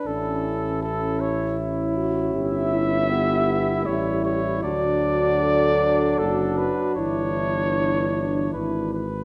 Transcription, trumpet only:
0.06 0.82 A4 medium
0.82 1.22 A4 medium
1.21 1.58 C#5 medium
2.33 3.87 E5 loud
3.86 4.24 C#5 medium
4.25 4.63 C#5 medium
4.63 6.20 D5 medium
6.18 6.59 A4 medium
6.57 6.95 B4 medium
6.95 8.50 C#5 medium
8.53 8.93 B4 medium
8.94 9.23 B4 medium

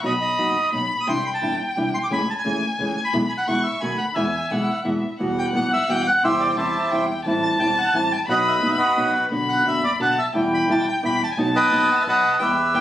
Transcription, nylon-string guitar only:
0.03 0.12 B2 medium
0.03 0.13 F#3 medium
0.03 0.13 B3 medium
0.03 0.13 D#4 medium
0.03 0.13 F#4 medium
0.38 0.55 B2 soft
0.38 0.55 F#3 soft
0.38 0.55 B3 medium
0.38 0.56 D#4 soft
0.38 0.56 F#4 medium
0.72 0.89 B2 soft
0.72 0.90 F#3 medium
0.72 0.90 B3 soft
0.72 0.90 D#4 soft
0.72 0.90 F#4 medium
1.07 1.16 C3 medium
1.07 1.17 E3 medium
1.07 1.17 G3 medium
1.07 1.17 D4 medium
1.07 1.17 E4 medium
1.42 1.59 C3 medium
1.42 1.59 E3 medium
1.42 1.59 G3 medium
1.42 1.59 D4 medium
1.42 1.60 E4 medium
1.76 1.94 C3 soft
1.76 1.94 E3 medium
1.76 1.94 G3 medium
1.76 1.94 D4 medium
1.76 1.94 E4 medium
2.10 2.20 C#3 medium
2.10 2.20 E3 medium
2.10 2.20 A3 medium
2.10 2.20 C#4 medium
2.10 2.20 G#4 medium
2.44 2.62 C#3 soft
2.44 2.62 E3 medium
2.44 2.62 A3 medium
2.44 2.62 C#4 medium
2.44 2.62 G#4 medium
2.79 2.96 C#3 medium
2.79 2.97 E3 medium
2.79 2.97 A3 soft
2.79 2.97 C#4 medium
2.79 2.97 G#4 medium
3.13 3.22 B2 medium
3.13 3.23 E3 medium
3.13 3.23 G#3 medium
3.13 3.23 B3 medium
3.13 3.23 E4 medium
3.47 3.65 B2 medium
3.47 3.65 E3 medium
3.47 3.65 G#3 medium
3.47 3.65 B3 medium
3.47 3.65 E4 medium
3.81 3.99 B2 medium
3.81 3.99 D#3 soft
3.81 3.99 A3 medium
3.81 3.99 B3 medium
3.81 3.99 F#4 medium
4.16 4.25 B2 medium
4.16 4.25 E3 medium
4.16 4.25 G#3 medium
4.16 4.25 B3 medium
4.16 4.26 E4 medium
4.50 4.68 B2 soft
4.50 4.68 E3 medium
4.50 4.68 G#3 medium
4.50 4.68 B3 soft
4.50 4.68 E4 medium
4.84 5.02 B2 soft
4.84 5.02 E3 soft
4.84 5.02 G#3 medium
4.84 5.03 B3 medium
4.84 5.03 E4 medium
5.19 5.53 B2 medium
5.19 5.54 E3 medium
5.19 5.54 G3 medium
5.19 5.54 B3 medium
5.19 5.54 F#4 medium
5.54 5.72 B2 medium
5.54 5.72 E3 medium
5.54 5.72 G3 medium
5.54 5.72 B3 medium
5.54 5.72 F#4 medium
5.88 6.06 B2 medium
5.88 6.06 E3 medium
5.88 6.06 G3 medium
5.88 6.06 B3 medium
5.88 6.06 F#4 medium
6.23 6.56 C3 medium
6.23 6.56 E3 medium
6.23 6.56 G3 medium
6.23 6.56 C4 medium
6.23 6.57 E4 medium
6.57 6.74 C3 medium
6.57 6.74 E3 medium
6.57 6.74 G3 medium
6.57 6.75 C4 medium
6.57 6.75 E4 medium
6.91 7.08 C3 medium
6.91 7.09 E3 medium
6.91 7.09 G3 medium
6.91 7.09 C4 medium
6.91 7.09 E4 medium
7.26 7.58 E3 medium
7.26 7.59 G3 medium
7.26 7.59 C4 medium
7.26 7.60 E4 medium
7.60 7.77 E3 medium
7.60 7.77 G3 medium
7.60 7.77 C4 medium
7.60 7.77 E4 medium
7.93 8.11 E3 medium
7.93 8.11 G3 medium
7.93 8.12 C4 medium
7.93 8.12 E4 medium
8.28 8.61 B2 medium
8.28 8.61 F#3 medium
8.28 8.61 B3 medium
8.28 8.62 D#4 medium
8.28 8.62 F#4 medium
8.62 8.80 B2 medium
8.62 8.80 F#3 medium
8.62 8.80 B3 medium
8.62 8.80 D#4 medium
8.62 8.80 F#4 medium
8.96 9.14 B2 medium
8.96 9.14 F#3 medium
8.96 9.14 B3 medium
8.96 9.14 D#4 medium
8.96 9.15 F#4 medium
9.30 9.64 B2 medium
9.30 9.64 D3 medium
9.30 9.65 B3 medium
9.30 9.65 D4 medium
9.30 9.65 F#4 medium
9.65 9.83 B2 medium
9.65 9.83 D3 medium
9.65 9.83 B3 medium
9.65 9.83 D4 medium
9.65 9.84 F#4 medium
9.99 10.17 B2 medium
9.99 10.17 D3 medium
9.99 10.17 B3 medium
9.99 10.17 D4 medium
9.99 10.17 F#4 medium
10.33 10.68 B2 medium
10.33 10.68 E3 medium
10.33 10.68 G3 medium
10.33 10.68 B3 medium
10.33 10.69 E4 medium
10.69 10.86 B2 medium
10.69 10.86 E3 medium
10.69 10.86 G3 medium
10.69 10.86 B3 medium
10.69 10.87 E4 medium
11.03 11.20 B2 medium
11.03 11.20 E3 medium
11.03 11.20 G3 medium
11.03 11.20 B3 medium
11.03 11.21 E4 medium
11.37 11.70 B2 medium
11.37 11.70 F#3 medium
11.37 11.71 B3 medium
11.37 11.71 D#4 medium
11.37 11.71 F#4 medium
11.71 11.88 B2 medium
11.71 11.89 F#3 medium
11.71 11.89 B3 medium
11.71 11.89 D#4 medium
11.71 11.89 F#4 medium
12.06 12.23 B2 medium
12.06 12.23 F#3 medium
12.06 12.23 B3 medium
12.06 12.23 D#4 medium
12.06 12.23 F#4 medium
12.40 12.51 E3 medium
12.40 12.51 G3 medium
12.40 12.51 B3 medium
12.74 12.81 E3 medium
12.74 12.81 G3 medium
12.74 12.81 B3 medium

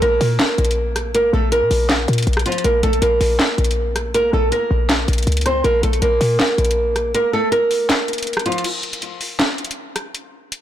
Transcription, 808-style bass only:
0.02 0.20 A#1 loud
0.21 0.39 A#2 loud
0.58 1.16 A#1 loud
1.14 1.26 A1 loud
1.24 1.33 A#1 loud
1.33 1.63 A#1 loud
1.62 1.70 A#2 loud
1.71 2.07 A#1 loud
2.08 2.26 A#2 loud
2.27 2.45 A#1 loud
2.64 2.82 A#1 loud
2.83 3.01 A#1 loud
3.02 3.20 A#1 loud
3.21 3.39 A#1 loud
3.58 4.30 A#1 loud
4.33 4.51 A#1 loud
4.71 5.07 A#1 loud
5.08 5.26 A#1 loud
5.27 5.63 C#2 loud
5.64 5.82 A#1 loud
5.83 6.01 A#1 loud
6.02 6.20 A#1 loud
6.21 6.39 A#2 loud
6.58 7.14 A#1 loud

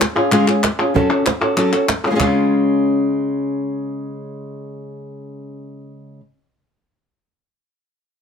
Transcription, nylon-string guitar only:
0.00 muted nylon-string guitar stroke medium
0.16 0.31 C#4 medium
0.16 0.32 F4 medium
0.16 0.31 G#4 medium
0.31 0.47 C#3 medium
0.31 0.47 G#3 loud
0.31 0.48 C#4 loud
0.31 0.47 F4 loud
0.31 0.46 G#4 loud
0.48 0.63 C#4 medium
0.48 0.63 F4 medium
0.48 0.63 G#4 medium
0.64 muted nylon-string guitar stroke medium
0.79 0.94 C#4 soft
0.79 0.95 F4 medium
0.79 0.94 G#4 medium
0.94 1.10 F#3 medium
0.94 1.10 C#4 medium
0.94 1.10 F#4 medium
0.94 1.09 A4 loud
1.10 1.25 C#4 medium
1.10 1.25 F#4 medium
1.10 1.25 A4 medium
1.26 muted nylon-string guitar stroke medium
1.41 1.56 C#4 medium
1.41 1.57 F#4 medium
1.41 1.56 A4 medium
1.57 1.72 F#3 loud
1.57 1.72 C#4 medium
1.57 1.73 F#4 medium
1.57 1.71 A4 loud
1.73 1.87 C#4 soft
1.73 1.87 F#4 medium
1.73 1.88 A4 medium
1.88 muted nylon-string guitar stroke medium
2.04 2.09 G#3 medium
2.04 2.08 C#4 soft
2.04 2.10 F4 medium
2.04 2.07 F#4 medium
2.04 2.11 G#4 medium
2.04 2.07 A4 medium
2.11 2.14 G#3 medium
2.11 2.14 C#4 medium
2.11 2.15 F4 medium
2.11 2.15 G#4 medium
2.15 2.19 G#3 medium
2.15 2.19 C#4 medium
2.15 2.19 F4 medium
2.15 2.19 G#4 medium
2.20 6.20 C#3 medium
2.20 6.20 G#3 medium
2.20 6.20 C#4 medium
2.20 6.20 F4 loud
2.20 6.20 G#4 medium

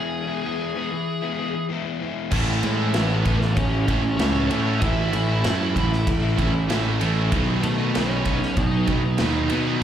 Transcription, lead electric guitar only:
0.00 1.66 G#4 medium
0.00 1.66 G#5 medium
2.64 2.93 G#3 medium
2.64 2.96 G#4 medium
2.94 3.53 B3 medium
2.94 3.43 B4 loud
3.43 3.54 A4 loud
3.55 4.15 C#4 medium
3.55 4.15 C#5 loud
4.16 4.47 C#4 medium
4.16 4.46 C#5 loud
4.47 4.78 C#4 medium
4.47 4.81 C#5 loud
4.79 6.65 E4 medium
4.79 6.64 E5 loud
7.63 7.93 A3 medium
7.63 7.92 A4 medium
7.94 8.53 C#4 medium
7.94 8.57 C#5 loud
8.57 9.83 D#4 medium
8.57 9.83 D#5 loud

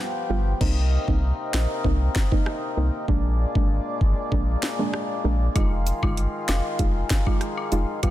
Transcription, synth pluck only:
0.00 0.26 G3 medium
0.00 0.27 B3 medium
0.00 0.27 F4 medium
0.30 0.58 G3 medium
0.30 0.59 B3 medium
0.30 0.59 F4 medium
0.60 1.04 A#3 medium
0.60 1.04 C4 medium
0.60 1.04 D#4 loud
1.08 1.25 A#3 medium
1.08 1.25 C4 medium
1.08 1.26 D#4 medium
1.84 2.03 A#3 medium
1.84 2.03 C4 medium
1.84 2.04 D#4 loud
2.32 2.49 A#3 medium
2.32 2.49 C4 medium
2.32 2.49 D#4 medium
2.77 2.96 A#3 medium
2.77 2.96 C4 medium
2.77 2.96 D#4 medium
3.08 3.51 G#3 medium
3.08 3.52 A#3 medium
3.08 3.52 D4 loud
3.55 3.73 G#3 medium
3.55 3.73 A#3 medium
3.55 3.73 D4 medium
4.32 4.51 G#3 medium
4.32 4.51 A#3 medium
4.32 4.51 D4 loud
4.79 5.21 G#3 medium
4.79 5.21 A#3 medium
4.79 5.21 D4 medium
5.24 5.53 G#3 medium
5.24 5.53 A#3 medium
5.24 5.53 D4 medium
5.55 5.99 G#3 loud
5.55 5.99 D#4 medium
5.55 5.99 F4 loud
6.03 6.20 G#3 medium
6.03 6.20 D#4 medium
6.03 6.20 F4 medium
6.79 6.98 G#3 medium
6.79 6.98 D#4 medium
6.79 6.98 F4 loud
7.26 7.44 G#3 medium
7.26 7.44 D#4 medium
7.26 7.44 F4 medium
7.72 7.91 G#3 medium
7.72 7.91 D#4 medium
7.72 7.91 F4 medium
8.03 8.10 G3 loud
8.03 8.10 B3 medium
8.03 8.10 F4 loud

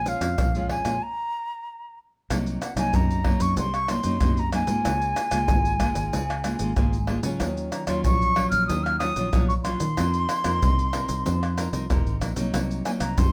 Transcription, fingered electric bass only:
0.00 0.14 A#1 medium
0.21 0.35 F2 medium
0.38 0.79 A#1 medium
0.85 0.99 A#2 medium
2.30 2.57 C2 medium
2.76 2.90 C2 medium
2.94 3.35 F#2 loud
3.41 3.55 F#2 medium
3.58 3.98 C2 loud
4.05 4.19 F#2 medium
4.22 4.63 F#2 medium
4.68 4.83 G#2 medium
4.86 5.13 C#2 medium
5.32 5.46 C#2 medium
5.49 5.90 G#1 loud
5.96 6.10 G#1 medium
6.14 6.54 C#2 medium
6.60 6.74 G#1 medium
6.77 7.18 G#1 medium
7.24 7.38 C#3 medium
7.41 7.69 D#2 loud
7.88 8.02 D#2 medium
8.05 8.46 A#1 loud
8.52 8.66 A#1 medium
8.69 9.10 D#2 loud
9.16 9.30 A#1 medium
9.34 9.75 A#1 medium
9.81 9.95 D#3 medium
9.98 10.25 F2 medium
10.45 10.59 F2 medium
10.62 11.03 C2 loud
11.10 11.23 C2 medium
11.26 11.67 F2 loud
11.73 11.87 C2 medium
11.91 12.04 F1 medium
12.07 12.21 G#1 medium
12.21 12.36 A#1 medium
12.37 12.52 C2 medium
12.54 12.81 C2 loud
13.00 13.15 C2 medium
13.18 13.32 F#2 loud

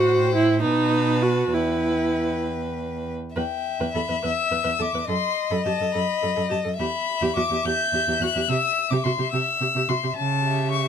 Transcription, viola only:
0.00 0.34 F#4 medium
0.35 0.61 E4 medium
0.61 1.23 D#4 medium
1.22 1.55 F#4 medium
1.54 2.45 E4 medium
3.36 3.42 B4 medium
3.80 3.86 B4 medium
3.95 4.00 A4 soft
4.08 4.14 B4 soft
4.23 4.29 B4 medium
4.51 4.57 B4 soft
4.64 4.70 B4 medium
4.79 4.85 A4 soft
4.94 5.00 B4 soft
5.08 5.14 A4 medium
5.51 5.57 A4 medium
5.65 5.71 G4 soft
5.80 5.86 A4 soft
5.94 6.00 A4 medium
6.22 6.28 A4 soft
6.36 6.42 A4 medium
6.49 6.55 G4 medium
6.64 6.70 A4 soft
6.79 6.85 G4 medium
7.22 7.27 G4 medium
7.36 7.42 F#4 soft
7.51 7.56 G4 medium
7.66 7.71 G4 medium
7.94 7.99 G4 soft
8.08 8.13 G4 medium
8.23 8.28 F#4 medium
8.36 8.42 G4 medium
8.50 8.56 G4 medium
8.92 8.98 G4 medium
9.06 9.11 F#4 medium
9.18 9.24 G4 medium
9.33 9.39 G4 medium
9.61 9.67 G4 soft
9.76 9.81 G4 medium
9.89 9.95 F#4 medium
10.03 10.09 G4 soft
10.43 10.88 G4 medium

